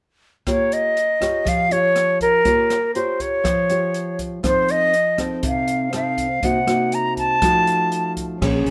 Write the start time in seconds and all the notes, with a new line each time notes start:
0.47 A#3 F4 G4 C#5, kick, cross-stick, closed hi-hat
0.72 D#5, closed hi-hat
0.97 closed hi-hat
1.20 F4 G4 C#5, kick, cross-stick, closed hi-hat
1.45 F3 F5, kick, closed hi-hat
1.71 F4 G4 C#5, closed hi-hat
1.96 cross-stick, closed hi-hat
2.21 A#4, kick, closed hi-hat
2.45 A#3 F4 G4 C#5, kick, closed hi-hat
2.70 cross-stick, closed hi-hat
2.95 F4 G4 C5 C#5, closed hi-hat
3.20 C#5, kick, closed hi-hat
3.44 F3, kick, cross-stick, closed hi-hat
3.70 F4 G4 C#5, closed hi-hat
3.94 closed hi-hat
4.19 kick, closed hi-hat
4.43 F3 C4 D#4 A4 C5, kick, cross-stick, closed hi-hat
4.69 D#5, closed hi-hat
4.94 closed hi-hat
5.18 C4 D#4 A4, kick, cross-stick, closed hi-hat
5.43 C3, kick, closed hi-hat
5.48 F5
5.68 closed hi-hat
5.93 C4 D#4 A4 F5, cross-stick, closed hi-hat
6.18 kick, closed hi-hat
6.43 C3 A#3 D#4 F#4 F#5, kick, closed hi-hat
6.67 A#3 D#4 F#4, cross-stick, closed hi-hat
6.92 A#5, closed hi-hat
7.17 A5, kick, closed hi-hat
7.42 F3 A3 D#4 F#4, kick, cross-stick, closed hi-hat
7.67 closed hi-hat
7.92 closed hi-hat
8.17 kick, closed hi-hat
8.41 A#1 A#3 C#4 G#4 C5, kick, cross-stick, crash
8.66 A#1, closed hi-hat